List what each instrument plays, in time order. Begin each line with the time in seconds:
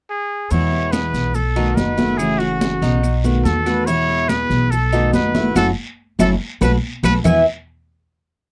0.10 muted trumpet G#4
0.51 upright bass E2, steel-string acoustic guitar B2 E3 G#3 B3 E4, cuban tres E4, muted trumpet C#5, high conga, long guiro, maracas
0.72 high conga
0.92 cuban tres G#4, muted trumpet B4, high conga, short guiro, claves, maracas
1.14 upright bass B1, high conga, short guiro, maracas
1.34 muted trumpet A4, cuban tres A4, muted steel-string acoustic guitar stroke, high conga, long guiro, maracas
1.56 steel-string acoustic guitar D#3 A3 B3 F#4, cuban tres D#4, high conga, claves
1.75 upright bass F#1, steel-string acoustic guitar D#3 A3 F#4, muted trumpet B4, high conga, short guiro, maracas
1.97 steel-string acoustic guitar D#3 A3 B3 F#4, cuban tres E4, high conga, short guiro, maracas
2.17 steel-string acoustic guitar C#3 E3 A3 C#4 F#4, muted trumpet G#4, high conga, long guiro, claves, maracas
2.39 muted trumpet F#4, cuban tres F#4, high conga
2.61 high conga, short guiro, maracas
2.82 upright bass B1, cuban tres D#4, high conga, short guiro, maracas
3.03 muted steel-string acoustic guitar stroke, high conga, long guiro, claves, maracas
3.24 steel-string acoustic guitar D#3 A3 B3 F#4, cuban tres F#4, high conga, maracas
3.44 upright bass E2, steel-string acoustic guitar D#3 F#4, muted trumpet A4, high conga, short guiro, maracas
3.66 steel-string acoustic guitar D#3 A3 B3 F#4, cuban tres B4, high conga, short guiro, claves, maracas
3.86 steel-string acoustic guitar B2 E3 G#3 B3, cuban tres E4, muted trumpet C#5, high conga, long guiro, maracas
4.09 high conga
4.28 cuban tres G#4, muted trumpet B4, high conga, short guiro, claves, maracas
4.50 upright bass B1, high conga, short guiro, maracas
4.71 muted trumpet A4, cuban tres A4, muted steel-string acoustic guitar stroke, high conga, long guiro, maracas
4.93 steel-string acoustic guitar D#3 A3 B3 F#4, cuban tres D#4, high conga, claves, maracas
5.13 upright bass F#1, steel-string acoustic guitar D#3 A3 B3 F#4, muted trumpet B4, high conga, short guiro, maracas
5.34 steel-string acoustic guitar D#3 A3 B3 F#4, cuban tres E4, high conga, short guiro, maracas
5.55 upright bass F#1, steel-string acoustic guitar F#3 A3 C#4, cuban tres E4 F#4 A4, muted trumpet A4, high conga, long guiro, claves, maracas
6.19 upright bass F#1, steel-string acoustic guitar F#3 A3 C#4, cuban tres E4 F#4 A4, muted trumpet A4, high conga, long guiro, claves, maracas
6.61 upright bass B1, steel-string acoustic guitar F#3 A3 B3, cuban tres F#4 A4 B4, muted trumpet B4, high conga, long guiro, claves, maracas
7.03 upright bass B1, steel-string acoustic guitar F#3 A3 B3, cuban tres F#4 A4 B4, muted trumpet B4, high conga, long guiro, claves, maracas
7.24 steel-string acoustic guitar E2 B2 E3 G#3 B3 E4, upright bass E2, cuban tres E4 B4 E5, muted trumpet G#5, low conga, long guiro, claves, maracas